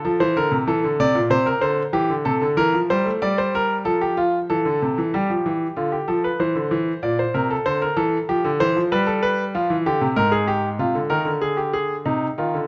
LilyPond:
<<
  \new Staff \with { instrumentName = "Grand piano" } { \time 4/4 \key g \minor \tempo 4 = 95 a'16 c''16 bes'8 a'8 d''8 c''16 bes'16 c''8 g'8 a'8 | bes'8 c''8 d''16 c''16 bes'8 a'16 g'16 f'8 a'4 | g'4 f'16 g'16 a'16 b'16 c''4 d''16 c''16 bes'16 a'16 | c''16 bes'16 a'8 g'8 c''8 b'16 a'16 b'8 f'8 g'8 |
\key f \dorian bes'16 aes'16 g'8 f'8 bes'8 aes'16 g'16 aes'8 ees'8 f'8 | }
  \new Staff \with { instrumentName = "Grand piano" } { \clef bass \time 4/4 \key g \minor f16 e16 d16 c16 e16 d16 c16 bes,16 c8 d8 e16 d16 c16 d16 | e16 f16 g16 a16 g4 f4 e16 d16 c16 e16 | g16 f16 e8 d8 f8 e16 d16 e8 bes,8 c8 | d8 e8 f16 d16 e16 f16 g4 f16 e16 d16 c16 |
\key f \dorian aes,4 c16 d16 ees16 d4~ d16 c8 ees16 d16 | }
>>